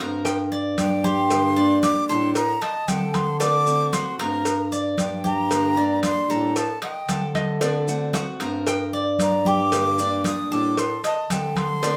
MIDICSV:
0, 0, Header, 1, 8, 480
1, 0, Start_track
1, 0, Key_signature, -2, "minor"
1, 0, Tempo, 526316
1, 1190, Time_signature, 4, 2, 24, 8
1, 10915, End_track
2, 0, Start_track
2, 0, Title_t, "Flute"
2, 0, Program_c, 0, 73
2, 717, Note_on_c, 0, 79, 92
2, 954, Note_on_c, 0, 84, 107
2, 967, Note_off_c, 0, 79, 0
2, 1662, Note_off_c, 0, 84, 0
2, 1668, Note_on_c, 0, 86, 108
2, 1891, Note_off_c, 0, 86, 0
2, 1907, Note_on_c, 0, 84, 96
2, 2130, Note_off_c, 0, 84, 0
2, 2145, Note_on_c, 0, 82, 104
2, 2383, Note_on_c, 0, 81, 92
2, 2397, Note_off_c, 0, 82, 0
2, 2625, Note_on_c, 0, 79, 91
2, 2639, Note_off_c, 0, 81, 0
2, 2866, Note_on_c, 0, 84, 93
2, 2879, Note_off_c, 0, 79, 0
2, 3098, Note_off_c, 0, 84, 0
2, 3103, Note_on_c, 0, 86, 105
2, 3584, Note_on_c, 0, 84, 93
2, 3598, Note_off_c, 0, 86, 0
2, 3818, Note_off_c, 0, 84, 0
2, 3823, Note_on_c, 0, 82, 88
2, 4266, Note_off_c, 0, 82, 0
2, 4557, Note_on_c, 0, 79, 82
2, 4774, Note_off_c, 0, 79, 0
2, 4799, Note_on_c, 0, 82, 98
2, 5474, Note_off_c, 0, 82, 0
2, 5513, Note_on_c, 0, 84, 109
2, 5752, Note_on_c, 0, 82, 98
2, 5765, Note_off_c, 0, 84, 0
2, 5993, Note_on_c, 0, 81, 91
2, 6007, Note_off_c, 0, 82, 0
2, 6228, Note_off_c, 0, 81, 0
2, 6233, Note_on_c, 0, 79, 81
2, 6674, Note_off_c, 0, 79, 0
2, 8411, Note_on_c, 0, 82, 93
2, 8645, Note_on_c, 0, 86, 104
2, 8659, Note_off_c, 0, 82, 0
2, 9355, Note_off_c, 0, 86, 0
2, 9362, Note_on_c, 0, 87, 108
2, 9605, Note_on_c, 0, 86, 105
2, 9619, Note_off_c, 0, 87, 0
2, 9838, Note_on_c, 0, 84, 96
2, 9852, Note_off_c, 0, 86, 0
2, 10072, Note_off_c, 0, 84, 0
2, 10086, Note_on_c, 0, 81, 83
2, 10320, Note_on_c, 0, 79, 89
2, 10334, Note_off_c, 0, 81, 0
2, 10550, Note_on_c, 0, 84, 110
2, 10564, Note_off_c, 0, 79, 0
2, 10915, Note_off_c, 0, 84, 0
2, 10915, End_track
3, 0, Start_track
3, 0, Title_t, "Nylon-string guitar"
3, 0, Program_c, 1, 24
3, 0, Note_on_c, 1, 78, 104
3, 222, Note_off_c, 1, 78, 0
3, 225, Note_on_c, 1, 79, 88
3, 563, Note_off_c, 1, 79, 0
3, 6703, Note_on_c, 1, 75, 78
3, 6942, Note_off_c, 1, 75, 0
3, 6946, Note_on_c, 1, 74, 87
3, 7191, Note_off_c, 1, 74, 0
3, 7192, Note_on_c, 1, 78, 87
3, 7413, Note_off_c, 1, 78, 0
3, 7424, Note_on_c, 1, 78, 98
3, 7905, Note_off_c, 1, 78, 0
3, 7909, Note_on_c, 1, 79, 100
3, 8241, Note_off_c, 1, 79, 0
3, 10915, End_track
4, 0, Start_track
4, 0, Title_t, "Cuban tres"
4, 0, Program_c, 2, 25
4, 0, Note_on_c, 2, 70, 85
4, 457, Note_off_c, 2, 70, 0
4, 472, Note_on_c, 2, 74, 78
4, 937, Note_off_c, 2, 74, 0
4, 950, Note_on_c, 2, 67, 81
4, 1415, Note_off_c, 2, 67, 0
4, 1427, Note_on_c, 2, 74, 77
4, 1893, Note_off_c, 2, 74, 0
4, 1909, Note_on_c, 2, 69, 79
4, 2374, Note_off_c, 2, 69, 0
4, 2385, Note_on_c, 2, 75, 72
4, 2618, Note_off_c, 2, 75, 0
4, 2626, Note_on_c, 2, 69, 66
4, 3091, Note_off_c, 2, 69, 0
4, 3100, Note_on_c, 2, 62, 78
4, 3568, Note_off_c, 2, 62, 0
4, 3586, Note_on_c, 2, 66, 65
4, 3818, Note_off_c, 2, 66, 0
4, 3824, Note_on_c, 2, 70, 82
4, 4289, Note_off_c, 2, 70, 0
4, 4305, Note_on_c, 2, 74, 72
4, 4769, Note_off_c, 2, 74, 0
4, 4779, Note_on_c, 2, 67, 75
4, 5246, Note_off_c, 2, 67, 0
4, 5264, Note_on_c, 2, 74, 73
4, 5729, Note_off_c, 2, 74, 0
4, 5743, Note_on_c, 2, 69, 80
4, 6208, Note_off_c, 2, 69, 0
4, 6220, Note_on_c, 2, 75, 68
4, 6454, Note_off_c, 2, 75, 0
4, 6465, Note_on_c, 2, 69, 70
4, 6929, Note_off_c, 2, 69, 0
4, 6941, Note_on_c, 2, 62, 85
4, 7408, Note_off_c, 2, 62, 0
4, 7423, Note_on_c, 2, 66, 72
4, 7656, Note_off_c, 2, 66, 0
4, 7665, Note_on_c, 2, 70, 79
4, 8130, Note_off_c, 2, 70, 0
4, 8147, Note_on_c, 2, 74, 75
4, 8611, Note_off_c, 2, 74, 0
4, 8629, Note_on_c, 2, 67, 84
4, 9093, Note_off_c, 2, 67, 0
4, 9113, Note_on_c, 2, 74, 77
4, 9575, Note_off_c, 2, 74, 0
4, 9592, Note_on_c, 2, 69, 82
4, 10055, Note_off_c, 2, 69, 0
4, 10070, Note_on_c, 2, 75, 77
4, 10302, Note_off_c, 2, 75, 0
4, 10310, Note_on_c, 2, 69, 67
4, 10775, Note_off_c, 2, 69, 0
4, 10787, Note_on_c, 2, 62, 81
4, 10915, Note_off_c, 2, 62, 0
4, 10915, End_track
5, 0, Start_track
5, 0, Title_t, "Steel-string acoustic guitar"
5, 0, Program_c, 3, 25
5, 0, Note_on_c, 3, 60, 61
5, 0, Note_on_c, 3, 66, 78
5, 2, Note_on_c, 3, 57, 56
5, 221, Note_off_c, 3, 66, 0
5, 225, Note_off_c, 3, 60, 0
5, 227, Note_off_c, 3, 57, 0
5, 707, Note_on_c, 3, 55, 53
5, 714, Note_on_c, 3, 58, 57
5, 718, Note_on_c, 3, 62, 53
5, 719, Note_on_c, 3, 67, 62
5, 1178, Note_off_c, 3, 55, 0
5, 1182, Note_off_c, 3, 58, 0
5, 1184, Note_off_c, 3, 62, 0
5, 1185, Note_off_c, 3, 67, 0
5, 1186, Note_on_c, 3, 50, 77
5, 1191, Note_on_c, 3, 55, 90
5, 1194, Note_on_c, 3, 58, 81
5, 1196, Note_on_c, 3, 62, 80
5, 1197, Note_on_c, 3, 67, 79
5, 1417, Note_off_c, 3, 67, 0
5, 1418, Note_off_c, 3, 50, 0
5, 1420, Note_off_c, 3, 55, 0
5, 1422, Note_off_c, 3, 58, 0
5, 1423, Note_off_c, 3, 62, 0
5, 1428, Note_on_c, 3, 67, 77
5, 1433, Note_on_c, 3, 62, 73
5, 1438, Note_on_c, 3, 58, 65
5, 1442, Note_on_c, 3, 55, 69
5, 1898, Note_off_c, 3, 67, 0
5, 1901, Note_off_c, 3, 62, 0
5, 1903, Note_off_c, 3, 58, 0
5, 1905, Note_off_c, 3, 55, 0
5, 1908, Note_on_c, 3, 67, 80
5, 1913, Note_on_c, 3, 62, 74
5, 1916, Note_on_c, 3, 58, 70
5, 1921, Note_on_c, 3, 55, 56
5, 2138, Note_off_c, 3, 67, 0
5, 2140, Note_off_c, 3, 55, 0
5, 2141, Note_off_c, 3, 62, 0
5, 2142, Note_off_c, 3, 58, 0
5, 2629, Note_on_c, 3, 55, 52
5, 2634, Note_on_c, 3, 60, 67
5, 3098, Note_off_c, 3, 55, 0
5, 3100, Note_off_c, 3, 60, 0
5, 3107, Note_on_c, 3, 50, 77
5, 3111, Note_on_c, 3, 57, 82
5, 3114, Note_on_c, 3, 60, 82
5, 3120, Note_on_c, 3, 66, 85
5, 3329, Note_off_c, 3, 66, 0
5, 3336, Note_off_c, 3, 50, 0
5, 3337, Note_off_c, 3, 60, 0
5, 3338, Note_off_c, 3, 57, 0
5, 3340, Note_on_c, 3, 66, 72
5, 3347, Note_on_c, 3, 60, 63
5, 3354, Note_on_c, 3, 57, 59
5, 3810, Note_off_c, 3, 66, 0
5, 3816, Note_off_c, 3, 60, 0
5, 3820, Note_off_c, 3, 57, 0
5, 3821, Note_on_c, 3, 66, 76
5, 3827, Note_on_c, 3, 60, 68
5, 3833, Note_on_c, 3, 57, 64
5, 4053, Note_off_c, 3, 66, 0
5, 4056, Note_off_c, 3, 60, 0
5, 4057, Note_off_c, 3, 57, 0
5, 4547, Note_on_c, 3, 55, 52
5, 4549, Note_on_c, 3, 58, 56
5, 4551, Note_on_c, 3, 62, 56
5, 4559, Note_on_c, 3, 67, 58
5, 5009, Note_off_c, 3, 55, 0
5, 5014, Note_off_c, 3, 58, 0
5, 5017, Note_off_c, 3, 62, 0
5, 5018, Note_on_c, 3, 50, 78
5, 5020, Note_on_c, 3, 55, 76
5, 5021, Note_off_c, 3, 67, 0
5, 5025, Note_on_c, 3, 58, 81
5, 5027, Note_on_c, 3, 62, 84
5, 5031, Note_on_c, 3, 67, 84
5, 5244, Note_off_c, 3, 67, 0
5, 5250, Note_off_c, 3, 50, 0
5, 5250, Note_off_c, 3, 62, 0
5, 5252, Note_off_c, 3, 55, 0
5, 5254, Note_off_c, 3, 58, 0
5, 5255, Note_on_c, 3, 67, 68
5, 5261, Note_on_c, 3, 62, 68
5, 5267, Note_on_c, 3, 55, 55
5, 5267, Note_on_c, 3, 58, 64
5, 5720, Note_off_c, 3, 67, 0
5, 5728, Note_off_c, 3, 62, 0
5, 5731, Note_off_c, 3, 58, 0
5, 5731, Note_on_c, 3, 67, 73
5, 5733, Note_off_c, 3, 55, 0
5, 5739, Note_on_c, 3, 62, 73
5, 5742, Note_on_c, 3, 58, 59
5, 5744, Note_on_c, 3, 55, 64
5, 5967, Note_off_c, 3, 67, 0
5, 5971, Note_off_c, 3, 62, 0
5, 5973, Note_off_c, 3, 58, 0
5, 5974, Note_off_c, 3, 55, 0
5, 6465, Note_on_c, 3, 55, 58
5, 6473, Note_on_c, 3, 60, 63
5, 6934, Note_off_c, 3, 55, 0
5, 6935, Note_off_c, 3, 60, 0
5, 6939, Note_on_c, 3, 50, 70
5, 6941, Note_on_c, 3, 57, 86
5, 6946, Note_on_c, 3, 60, 85
5, 6951, Note_on_c, 3, 66, 87
5, 7170, Note_off_c, 3, 66, 0
5, 7171, Note_off_c, 3, 50, 0
5, 7172, Note_off_c, 3, 57, 0
5, 7175, Note_off_c, 3, 60, 0
5, 7181, Note_on_c, 3, 66, 68
5, 7189, Note_on_c, 3, 60, 71
5, 7195, Note_on_c, 3, 57, 63
5, 7649, Note_off_c, 3, 66, 0
5, 7656, Note_off_c, 3, 60, 0
5, 7660, Note_off_c, 3, 57, 0
5, 7660, Note_on_c, 3, 66, 71
5, 7668, Note_on_c, 3, 60, 68
5, 7676, Note_on_c, 3, 57, 63
5, 7892, Note_off_c, 3, 66, 0
5, 7896, Note_off_c, 3, 60, 0
5, 7898, Note_off_c, 3, 57, 0
5, 8383, Note_on_c, 3, 55, 57
5, 8389, Note_on_c, 3, 58, 56
5, 8393, Note_on_c, 3, 62, 62
5, 8400, Note_on_c, 3, 67, 64
5, 8854, Note_off_c, 3, 55, 0
5, 8857, Note_off_c, 3, 58, 0
5, 8859, Note_off_c, 3, 62, 0
5, 8862, Note_off_c, 3, 67, 0
5, 8868, Note_on_c, 3, 50, 83
5, 8875, Note_on_c, 3, 55, 78
5, 8875, Note_on_c, 3, 58, 85
5, 8877, Note_on_c, 3, 62, 77
5, 8881, Note_on_c, 3, 67, 85
5, 9095, Note_off_c, 3, 67, 0
5, 9097, Note_off_c, 3, 50, 0
5, 9100, Note_off_c, 3, 55, 0
5, 9100, Note_off_c, 3, 58, 0
5, 9101, Note_off_c, 3, 62, 0
5, 9106, Note_on_c, 3, 67, 78
5, 9113, Note_on_c, 3, 62, 80
5, 9116, Note_on_c, 3, 58, 62
5, 9119, Note_on_c, 3, 55, 59
5, 9576, Note_off_c, 3, 67, 0
5, 9580, Note_off_c, 3, 62, 0
5, 9581, Note_off_c, 3, 58, 0
5, 9583, Note_off_c, 3, 55, 0
5, 9588, Note_on_c, 3, 67, 72
5, 9593, Note_on_c, 3, 62, 73
5, 9597, Note_on_c, 3, 58, 70
5, 9601, Note_on_c, 3, 55, 60
5, 9817, Note_off_c, 3, 67, 0
5, 9820, Note_off_c, 3, 62, 0
5, 9821, Note_off_c, 3, 55, 0
5, 9822, Note_off_c, 3, 58, 0
5, 10313, Note_on_c, 3, 55, 57
5, 10318, Note_on_c, 3, 60, 58
5, 10781, Note_off_c, 3, 55, 0
5, 10784, Note_off_c, 3, 60, 0
5, 10786, Note_on_c, 3, 50, 80
5, 10791, Note_on_c, 3, 57, 85
5, 10794, Note_on_c, 3, 60, 86
5, 10799, Note_on_c, 3, 66, 80
5, 10915, Note_off_c, 3, 50, 0
5, 10915, Note_off_c, 3, 57, 0
5, 10915, Note_off_c, 3, 60, 0
5, 10915, Note_off_c, 3, 66, 0
5, 10915, End_track
6, 0, Start_track
6, 0, Title_t, "Bass clarinet"
6, 0, Program_c, 4, 71
6, 0, Note_on_c, 4, 43, 88
6, 674, Note_off_c, 4, 43, 0
6, 714, Note_on_c, 4, 43, 102
6, 1850, Note_off_c, 4, 43, 0
6, 1911, Note_on_c, 4, 45, 90
6, 2352, Note_off_c, 4, 45, 0
6, 2628, Note_on_c, 4, 50, 100
6, 3765, Note_off_c, 4, 50, 0
6, 3825, Note_on_c, 4, 43, 88
6, 4507, Note_off_c, 4, 43, 0
6, 4543, Note_on_c, 4, 43, 95
6, 5682, Note_off_c, 4, 43, 0
6, 5741, Note_on_c, 4, 45, 91
6, 6184, Note_off_c, 4, 45, 0
6, 6462, Note_on_c, 4, 50, 93
6, 7602, Note_off_c, 4, 50, 0
6, 7663, Note_on_c, 4, 43, 93
6, 8347, Note_off_c, 4, 43, 0
6, 8385, Note_on_c, 4, 43, 102
6, 9526, Note_off_c, 4, 43, 0
6, 9582, Note_on_c, 4, 45, 88
6, 10027, Note_off_c, 4, 45, 0
6, 10305, Note_on_c, 4, 50, 93
6, 10915, Note_off_c, 4, 50, 0
6, 10915, End_track
7, 0, Start_track
7, 0, Title_t, "Muted steel-string acoustic guitar strokes"
7, 230, Note_on_c, 9, 29, 55
7, 321, Note_off_c, 9, 29, 0
7, 2148, Note_on_c, 9, 29, 64
7, 2239, Note_off_c, 9, 29, 0
7, 4060, Note_on_c, 9, 29, 59
7, 4151, Note_off_c, 9, 29, 0
7, 5980, Note_on_c, 9, 29, 56
7, 6071, Note_off_c, 9, 29, 0
7, 7898, Note_on_c, 9, 29, 71
7, 7989, Note_off_c, 9, 29, 0
7, 9828, Note_on_c, 9, 29, 61
7, 9919, Note_off_c, 9, 29, 0
7, 10915, End_track
8, 0, Start_track
8, 0, Title_t, "Drums"
8, 0, Note_on_c, 9, 70, 30
8, 90, Note_off_c, 9, 70, 0
8, 230, Note_on_c, 9, 56, 100
8, 230, Note_on_c, 9, 63, 34
8, 237, Note_on_c, 9, 70, 75
8, 321, Note_off_c, 9, 56, 0
8, 321, Note_off_c, 9, 63, 0
8, 328, Note_off_c, 9, 70, 0
8, 468, Note_on_c, 9, 63, 37
8, 559, Note_off_c, 9, 63, 0
8, 709, Note_on_c, 9, 56, 76
8, 709, Note_on_c, 9, 63, 90
8, 715, Note_on_c, 9, 70, 67
8, 801, Note_off_c, 9, 56, 0
8, 801, Note_off_c, 9, 63, 0
8, 806, Note_off_c, 9, 70, 0
8, 951, Note_on_c, 9, 63, 81
8, 958, Note_on_c, 9, 70, 31
8, 1042, Note_off_c, 9, 63, 0
8, 1049, Note_off_c, 9, 70, 0
8, 1188, Note_on_c, 9, 63, 39
8, 1190, Note_on_c, 9, 56, 106
8, 1193, Note_on_c, 9, 70, 70
8, 1279, Note_off_c, 9, 63, 0
8, 1281, Note_off_c, 9, 56, 0
8, 1284, Note_off_c, 9, 70, 0
8, 1429, Note_on_c, 9, 63, 36
8, 1520, Note_off_c, 9, 63, 0
8, 1668, Note_on_c, 9, 63, 89
8, 1670, Note_on_c, 9, 56, 71
8, 1672, Note_on_c, 9, 70, 72
8, 1759, Note_off_c, 9, 63, 0
8, 1761, Note_off_c, 9, 56, 0
8, 1763, Note_off_c, 9, 70, 0
8, 1906, Note_on_c, 9, 63, 34
8, 1911, Note_on_c, 9, 70, 30
8, 1998, Note_off_c, 9, 63, 0
8, 2003, Note_off_c, 9, 70, 0
8, 2145, Note_on_c, 9, 63, 33
8, 2146, Note_on_c, 9, 56, 102
8, 2150, Note_on_c, 9, 70, 73
8, 2237, Note_off_c, 9, 56, 0
8, 2237, Note_off_c, 9, 63, 0
8, 2241, Note_off_c, 9, 70, 0
8, 2390, Note_on_c, 9, 56, 68
8, 2390, Note_on_c, 9, 63, 37
8, 2481, Note_off_c, 9, 56, 0
8, 2482, Note_off_c, 9, 63, 0
8, 2628, Note_on_c, 9, 56, 69
8, 2629, Note_on_c, 9, 70, 71
8, 2630, Note_on_c, 9, 63, 88
8, 2720, Note_off_c, 9, 56, 0
8, 2720, Note_off_c, 9, 70, 0
8, 2721, Note_off_c, 9, 63, 0
8, 2864, Note_on_c, 9, 56, 69
8, 2867, Note_on_c, 9, 70, 33
8, 2872, Note_on_c, 9, 63, 82
8, 2955, Note_off_c, 9, 56, 0
8, 2958, Note_off_c, 9, 70, 0
8, 2963, Note_off_c, 9, 63, 0
8, 3104, Note_on_c, 9, 56, 102
8, 3106, Note_on_c, 9, 70, 74
8, 3110, Note_on_c, 9, 63, 38
8, 3195, Note_off_c, 9, 56, 0
8, 3198, Note_off_c, 9, 70, 0
8, 3201, Note_off_c, 9, 63, 0
8, 3345, Note_on_c, 9, 70, 63
8, 3346, Note_on_c, 9, 63, 36
8, 3437, Note_off_c, 9, 70, 0
8, 3438, Note_off_c, 9, 63, 0
8, 3583, Note_on_c, 9, 63, 86
8, 3585, Note_on_c, 9, 56, 75
8, 3587, Note_on_c, 9, 70, 72
8, 3674, Note_off_c, 9, 63, 0
8, 3676, Note_off_c, 9, 56, 0
8, 3678, Note_off_c, 9, 70, 0
8, 3822, Note_on_c, 9, 63, 35
8, 3826, Note_on_c, 9, 56, 73
8, 3828, Note_on_c, 9, 70, 29
8, 3914, Note_off_c, 9, 63, 0
8, 3917, Note_off_c, 9, 56, 0
8, 3920, Note_off_c, 9, 70, 0
8, 4060, Note_on_c, 9, 56, 98
8, 4065, Note_on_c, 9, 63, 34
8, 4067, Note_on_c, 9, 70, 77
8, 4152, Note_off_c, 9, 56, 0
8, 4156, Note_off_c, 9, 63, 0
8, 4158, Note_off_c, 9, 70, 0
8, 4302, Note_on_c, 9, 63, 34
8, 4308, Note_on_c, 9, 70, 58
8, 4394, Note_off_c, 9, 63, 0
8, 4399, Note_off_c, 9, 70, 0
8, 4538, Note_on_c, 9, 63, 85
8, 4542, Note_on_c, 9, 56, 67
8, 4551, Note_on_c, 9, 70, 68
8, 4629, Note_off_c, 9, 63, 0
8, 4633, Note_off_c, 9, 56, 0
8, 4642, Note_off_c, 9, 70, 0
8, 4782, Note_on_c, 9, 63, 81
8, 4790, Note_on_c, 9, 70, 30
8, 4873, Note_off_c, 9, 63, 0
8, 4881, Note_off_c, 9, 70, 0
8, 5022, Note_on_c, 9, 56, 114
8, 5024, Note_on_c, 9, 63, 36
8, 5028, Note_on_c, 9, 70, 70
8, 5114, Note_off_c, 9, 56, 0
8, 5116, Note_off_c, 9, 63, 0
8, 5119, Note_off_c, 9, 70, 0
8, 5267, Note_on_c, 9, 63, 36
8, 5358, Note_off_c, 9, 63, 0
8, 5498, Note_on_c, 9, 56, 75
8, 5502, Note_on_c, 9, 63, 90
8, 5508, Note_on_c, 9, 70, 69
8, 5589, Note_off_c, 9, 56, 0
8, 5593, Note_off_c, 9, 63, 0
8, 5599, Note_off_c, 9, 70, 0
8, 5745, Note_on_c, 9, 63, 33
8, 5746, Note_on_c, 9, 70, 32
8, 5836, Note_off_c, 9, 63, 0
8, 5837, Note_off_c, 9, 70, 0
8, 5982, Note_on_c, 9, 56, 104
8, 5982, Note_on_c, 9, 63, 34
8, 5985, Note_on_c, 9, 70, 74
8, 6073, Note_off_c, 9, 56, 0
8, 6073, Note_off_c, 9, 63, 0
8, 6076, Note_off_c, 9, 70, 0
8, 6218, Note_on_c, 9, 56, 70
8, 6224, Note_on_c, 9, 63, 35
8, 6309, Note_off_c, 9, 56, 0
8, 6316, Note_off_c, 9, 63, 0
8, 6462, Note_on_c, 9, 56, 73
8, 6466, Note_on_c, 9, 63, 81
8, 6466, Note_on_c, 9, 70, 67
8, 6554, Note_off_c, 9, 56, 0
8, 6557, Note_off_c, 9, 63, 0
8, 6557, Note_off_c, 9, 70, 0
8, 6702, Note_on_c, 9, 63, 79
8, 6703, Note_on_c, 9, 56, 67
8, 6710, Note_on_c, 9, 70, 31
8, 6793, Note_off_c, 9, 63, 0
8, 6794, Note_off_c, 9, 56, 0
8, 6801, Note_off_c, 9, 70, 0
8, 6941, Note_on_c, 9, 56, 109
8, 6944, Note_on_c, 9, 63, 37
8, 6947, Note_on_c, 9, 70, 75
8, 7032, Note_off_c, 9, 56, 0
8, 7035, Note_off_c, 9, 63, 0
8, 7038, Note_off_c, 9, 70, 0
8, 7181, Note_on_c, 9, 63, 37
8, 7187, Note_on_c, 9, 70, 61
8, 7272, Note_off_c, 9, 63, 0
8, 7278, Note_off_c, 9, 70, 0
8, 7417, Note_on_c, 9, 63, 88
8, 7421, Note_on_c, 9, 56, 73
8, 7430, Note_on_c, 9, 70, 69
8, 7508, Note_off_c, 9, 63, 0
8, 7512, Note_off_c, 9, 56, 0
8, 7521, Note_off_c, 9, 70, 0
8, 7658, Note_on_c, 9, 63, 33
8, 7660, Note_on_c, 9, 56, 67
8, 7669, Note_on_c, 9, 70, 29
8, 7749, Note_off_c, 9, 63, 0
8, 7751, Note_off_c, 9, 56, 0
8, 7760, Note_off_c, 9, 70, 0
8, 7900, Note_on_c, 9, 63, 34
8, 7903, Note_on_c, 9, 56, 107
8, 7911, Note_on_c, 9, 70, 80
8, 7991, Note_off_c, 9, 63, 0
8, 7995, Note_off_c, 9, 56, 0
8, 8002, Note_off_c, 9, 70, 0
8, 8140, Note_on_c, 9, 63, 38
8, 8232, Note_off_c, 9, 63, 0
8, 8378, Note_on_c, 9, 63, 86
8, 8386, Note_on_c, 9, 56, 70
8, 8391, Note_on_c, 9, 70, 69
8, 8470, Note_off_c, 9, 63, 0
8, 8477, Note_off_c, 9, 56, 0
8, 8482, Note_off_c, 9, 70, 0
8, 8621, Note_on_c, 9, 63, 82
8, 8635, Note_on_c, 9, 70, 30
8, 8712, Note_off_c, 9, 63, 0
8, 8726, Note_off_c, 9, 70, 0
8, 8860, Note_on_c, 9, 63, 36
8, 8865, Note_on_c, 9, 56, 113
8, 8870, Note_on_c, 9, 70, 70
8, 8951, Note_off_c, 9, 63, 0
8, 8956, Note_off_c, 9, 56, 0
8, 8961, Note_off_c, 9, 70, 0
8, 9104, Note_on_c, 9, 63, 38
8, 9107, Note_on_c, 9, 70, 68
8, 9195, Note_off_c, 9, 63, 0
8, 9199, Note_off_c, 9, 70, 0
8, 9342, Note_on_c, 9, 63, 94
8, 9348, Note_on_c, 9, 56, 72
8, 9352, Note_on_c, 9, 70, 68
8, 9433, Note_off_c, 9, 63, 0
8, 9439, Note_off_c, 9, 56, 0
8, 9444, Note_off_c, 9, 70, 0
8, 9584, Note_on_c, 9, 63, 36
8, 9594, Note_on_c, 9, 70, 31
8, 9675, Note_off_c, 9, 63, 0
8, 9685, Note_off_c, 9, 70, 0
8, 9823, Note_on_c, 9, 63, 35
8, 9826, Note_on_c, 9, 56, 101
8, 9833, Note_on_c, 9, 70, 76
8, 9914, Note_off_c, 9, 63, 0
8, 9917, Note_off_c, 9, 56, 0
8, 9924, Note_off_c, 9, 70, 0
8, 10062, Note_on_c, 9, 63, 36
8, 10069, Note_on_c, 9, 56, 69
8, 10071, Note_on_c, 9, 70, 60
8, 10154, Note_off_c, 9, 63, 0
8, 10160, Note_off_c, 9, 56, 0
8, 10162, Note_off_c, 9, 70, 0
8, 10307, Note_on_c, 9, 63, 84
8, 10308, Note_on_c, 9, 56, 78
8, 10314, Note_on_c, 9, 70, 70
8, 10398, Note_off_c, 9, 63, 0
8, 10399, Note_off_c, 9, 56, 0
8, 10405, Note_off_c, 9, 70, 0
8, 10540, Note_on_c, 9, 63, 79
8, 10547, Note_on_c, 9, 56, 66
8, 10553, Note_on_c, 9, 70, 29
8, 10631, Note_off_c, 9, 63, 0
8, 10639, Note_off_c, 9, 56, 0
8, 10645, Note_off_c, 9, 70, 0
8, 10782, Note_on_c, 9, 63, 37
8, 10787, Note_on_c, 9, 56, 106
8, 10794, Note_on_c, 9, 70, 77
8, 10873, Note_off_c, 9, 63, 0
8, 10878, Note_off_c, 9, 56, 0
8, 10885, Note_off_c, 9, 70, 0
8, 10915, End_track
0, 0, End_of_file